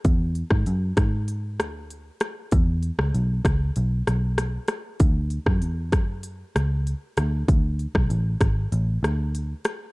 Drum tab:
HH |x-x-x-x-x-x-x-x-|x-x-x-x-x-x-x-x-|x-x-x-x-x-x-x-x-|x-x-x-x-x-x-x-x-|
SD |---r--r---r---r-|---r--r---r-r-r-|---r--r---r---r-|---r--r---r---r-|
BD |o--o--o---------|o-----o---------|o--o--o---------|o--o--o---------|